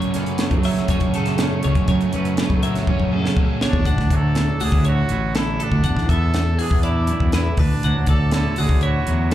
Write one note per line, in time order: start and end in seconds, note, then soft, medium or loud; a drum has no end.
0.00 0.39 F#2 medium
0.00 0.53 F#2 medium
0.00 1.85 F#2 medium
0.00 0.38 C#3 medium
0.00 0.18 F#3 loud
0.00 0.42 F#3 medium
0.00 0.16 A3 medium
0.00 0.15 C#4 medium
0.00 0.16 C#4 medium
0.00 0.17 C#5 medium
0.00 closed hi-hat soft
0.14 0.41 A3 medium
0.14 0.42 C#4 medium
0.14 0.90 C#4 medium
0.14 0.65 B4 medium
0.14 snare soft
0.14 closed hi-hat medium
0.18 0.41 F#3 medium
0.26 closed hi-hat soft
0.38 1.16 F#2 medium
0.38 0.87 C#3 medium
0.38 0.66 F#3 medium
0.38 0.64 A3 medium
0.38 snare loud
0.38 closed hi-hat medium
0.42 1.39 A3 medium
0.42 0.64 C#4 medium
0.51 0.80 F#3 medium
0.51 kick medium
0.51 closed hi-hat soft
0.63 2.64 F#3 medium
0.63 0.89 F#3 medium
0.63 0.90 A3 medium
0.63 0.91 C#4 medium
0.63 0.90 E5 medium
0.63 snare soft
0.63 open hi-hat medium
0.77 snare soft
0.77 closed hi-hat soft
0.88 0.98 F#2 medium
0.88 1.15 C#3 medium
0.88 1.14 F#3 medium
0.88 1.14 A3 medium
0.88 1.64 C#4 medium
0.88 1.13 C#4 medium
0.88 1.15 C#5 medium
0.88 kick medium
0.88 closed hi-hat medium
1.00 1.48 F#2 medium
1.00 kick medium
1.00 closed hi-hat soft
1.13 1.65 F#2 medium
1.13 1.86 C#3 medium
1.13 1.37 C#3 medium
1.13 1.39 F#3 medium
1.13 1.40 A3 medium
1.13 1.40 C#4 medium
1.13 1.64 A4 medium
1.13 closed hi-hat medium
1.26 snare soft
1.26 closed hi-hat soft
1.38 1.87 C#3 medium
1.38 1.65 F#3 medium
1.38 2.41 A3 medium
1.38 1.64 A3 medium
1.38 1.62 C#4 medium
1.38 snare loud
1.38 closed hi-hat medium
1.63 1.74 C#2 medium
1.63 1.88 F#3 medium
1.63 1.89 A3 medium
1.63 1.89 C#4 medium
1.63 2.15 C#4 medium
1.63 1.88 C#5 medium
1.63 closed hi-hat medium
1.75 1.85 F#2 medium
1.75 kick medium
1.75 closed hi-hat soft
1.88 2.36 F#2 medium
1.88 2.07 F#2 loud
1.88 3.36 F#2 medium
1.88 2.37 C#3 medium
1.88 2.14 F#3 loud
1.88 2.13 A3 medium
1.88 2.12 C#4 medium
1.88 2.13 C#5 medium
1.88 kick medium
1.88 closed hi-hat medium
2.01 closed hi-hat soft
2.13 2.33 F#2 medium
2.13 2.38 F#3 medium
2.13 2.38 A3 medium
2.13 2.39 C#4 medium
2.13 2.87 C#4 medium
2.13 2.63 B4 medium
2.13 closed hi-hat medium
2.25 closed hi-hat soft
2.37 2.87 F#2 medium
2.37 2.85 C#3 medium
2.37 2.64 F#3 medium
2.37 2.63 A3 medium
2.37 2.61 C#4 medium
2.37 snare loud
2.37 closed hi-hat medium
2.42 3.86 A3 medium
2.50 2.78 F#2 medium
2.50 kick medium
2.62 3.85 F#3 medium
2.62 2.87 F#3 medium
2.62 2.88 A3 medium
2.62 2.89 C#4 medium
2.62 2.89 E5 medium
2.62 closed hi-hat medium
2.75 snare soft
2.75 closed hi-hat soft
2.87 2.97 F#2 medium
2.87 3.13 C#3 medium
2.87 3.11 F#3 medium
2.87 3.11 A3 medium
2.87 3.84 C#4 medium
2.87 3.10 C#4 medium
2.87 3.13 C#5 medium
2.87 kick medium
2.87 high tom medium
3.00 3.19 F#2 medium
3.00 kick medium
3.11 3.63 F#2 medium
3.11 3.84 C#3 medium
3.11 3.35 C#3 medium
3.11 3.36 F#3 medium
3.11 3.37 A3 medium
3.11 3.38 C#4 medium
3.11 3.62 A4 medium
3.26 snare medium
3.36 3.62 F#2 medium
3.36 3.85 C#3 medium
3.36 3.64 F#3 medium
3.36 3.63 A3 medium
3.36 3.60 C#4 medium
3.36 kick medium
3.61 3.86 E2 medium
3.61 3.86 A3 medium
3.61 3.85 C#4 medium
3.61 3.86 C#5 medium
3.61 snare medium
3.65 3.87 F#3 medium
3.65 4.18 D4 medium
3.73 3.83 D#2 medium
3.73 kick medium
3.85 3.95 D2 medium
3.85 5.60 D2 medium
3.85 4.13 F#5 medium
3.85 kick medium
3.85 closed hi-hat medium
3.98 4.08 D2 medium
3.98 kick medium
3.98 snare soft
4.10 4.48 D2 medium
4.10 5.86 F#3 medium
4.10 4.62 D5 medium
4.10 kick medium
4.10 closed hi-hat medium
4.16 4.65 A4 loud
4.35 snare medium
4.35 closed hi-hat medium
4.60 4.71 D2 medium
4.60 6.60 D3 medium
4.60 4.73 D4 medium
4.60 4.86 F#4 medium
4.60 4.87 G#4 medium
4.60 open hi-hat medium
4.72 5.01 D2 medium
4.72 5.10 E4 medium
4.72 kick medium
4.85 5.85 A3 medium
4.85 5.33 F#4 medium
4.85 5.35 C#5 medium
4.85 closed hi-hat medium
5.09 5.57 A1 medium
5.09 6.60 E4 medium
5.09 closed hi-hat medium
5.35 5.65 E4 medium
5.35 5.58 A4 medium
5.35 snare loud
5.35 closed hi-hat medium
5.60 5.85 D2 medium
5.60 6.11 D4 medium
5.60 5.85 A4 medium
5.60 closed hi-hat medium
5.72 5.82 D2 medium
5.72 kick medium
5.84 5.94 E2 medium
5.84 7.08 E2 medium
5.84 6.09 F#5 medium
5.84 kick medium
5.84 closed hi-hat medium
5.97 6.07 E2 medium
5.97 kick medium
5.97 snare soft
6.09 6.56 E2 medium
6.09 7.57 B3 medium
6.09 6.60 A4 loud
6.09 6.59 E5 medium
6.09 kick medium
6.09 closed hi-hat medium
6.34 snare loud
6.34 closed hi-hat medium
6.59 7.61 E3 medium
6.59 6.83 D4 medium
6.59 6.84 G#4 medium
6.59 6.82 G#4 medium
6.59 open hi-hat medium
6.71 7.09 E2 medium
6.71 kick medium
6.83 8.33 D4 medium
6.83 7.30 E4 medium
6.83 7.34 D5 medium
6.83 closed hi-hat medium
7.07 7.33 F#2 medium
7.07 closed hi-hat medium
7.20 7.49 E2 medium
7.20 kick medium
7.32 7.58 E2 medium
7.32 7.61 E4 medium
7.32 7.58 B4 medium
7.32 snare loud
7.32 closed hi-hat medium
7.57 7.67 D2 medium
7.57 9.34 D2 medium
7.57 8.08 D4 medium
7.57 7.84 B4 medium
7.57 kick medium
7.57 open hi-hat medium
7.83 7.94 D2 medium
7.83 9.06 F#3 medium
7.83 8.09 F#5 medium
7.83 closed hi-hat medium
7.97 8.06 D2 medium
8.07 8.45 D2 medium
8.07 8.32 A4 medium
8.07 8.58 D5 medium
8.07 kick medium
8.07 closed hi-hat medium
8.31 9.34 D3 medium
8.31 8.82 E4 medium
8.31 8.61 A4 medium
8.31 snare loud
8.31 closed hi-hat medium
8.56 8.68 D2 medium
8.56 9.30 A3 medium
8.56 8.83 F#4 medium
8.56 8.83 G#4 medium
8.56 open hi-hat medium
8.69 8.98 D2 medium
8.69 kick medium
8.81 9.34 E4 medium
8.81 9.34 F#4 medium
8.81 9.32 C#5 medium
8.81 closed hi-hat medium
9.07 9.34 E2 medium
9.07 9.34 A2 medium
9.07 9.34 F#3 medium
9.07 closed hi-hat medium
9.31 9.34 A3 medium